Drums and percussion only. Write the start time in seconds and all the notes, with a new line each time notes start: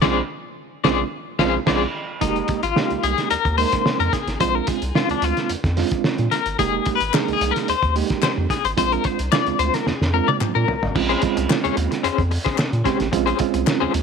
0.02 kick, snare, crash
0.85 kick, snare
1.39 kick, snare
1.67 kick, snare, crash
2.21 kick, closed hi-hat
2.36 closed hi-hat
2.48 kick, closed hi-hat
2.63 closed hi-hat
2.76 snare
2.90 closed hi-hat
3.03 closed hi-hat
3.18 snare, closed hi-hat
3.31 closed hi-hat
3.45 kick, closed hi-hat
3.58 open hi-hat
3.72 kick, snare, closed hi-hat
3.86 snare
4.00 closed hi-hat
4.13 kick, snare, closed hi-hat
4.28 snare, closed hi-hat
4.40 kick, closed hi-hat
4.67 kick, closed hi-hat
4.82 closed hi-hat
4.95 snare
5.10 closed hi-hat
5.22 closed hi-hat
5.37 snare, closed hi-hat
5.49 closed hi-hat
5.64 kick, snare, closed hi-hat
5.77 snare, open hi-hat
5.91 kick, closed hi-hat
6.04 snare
6.18 closed hi-hat
6.32 snare, closed hi-hat
6.46 closed hi-hat
6.59 kick, closed hi-hat
6.86 kick, closed hi-hat
7.00 closed hi-hat
7.14 snare, clap
7.28 closed hi-hat
7.41 closed hi-hat
7.56 snare, closed hi-hat
7.68 closed hi-hat
7.83 kick, closed hi-hat
7.96 open hi-hat
8.10 kick, snare, closed hi-hat
8.22 snare, clap
8.50 kick, snare, closed hi-hat
8.65 closed hi-hat
8.78 kick, closed hi-hat
8.92 closed hi-hat
9.04 kick, closed hi-hat
9.19 closed hi-hat
9.32 snare, clap
9.47 closed hi-hat
9.59 closed hi-hat
9.74 snare, closed hi-hat
9.87 snare
10.02 snare
10.28 high tom
10.41 clap, mid tom
10.68 floor tom
10.83 floor tom
10.95 kick, crash
11.10 closed hi-hat
11.22 kick, closed hi-hat
11.37 closed hi-hat
11.50 snare, clap
11.65 closed hi-hat
11.77 closed hi-hat
11.92 snare, closed hi-hat
12.04 closed hi-hat
12.18 kick, closed hi-hat
12.31 open hi-hat
12.46 kick, snare, closed hi-hat
12.58 snare, clap
12.73 closed hi-hat
12.85 kick, snare, closed hi-hat
13.00 snare, closed hi-hat
13.13 kick, closed hi-hat
13.27 closed hi-hat
13.39 kick, closed hi-hat
13.54 closed hi-hat
13.67 snare, clap
13.94 closed hi-hat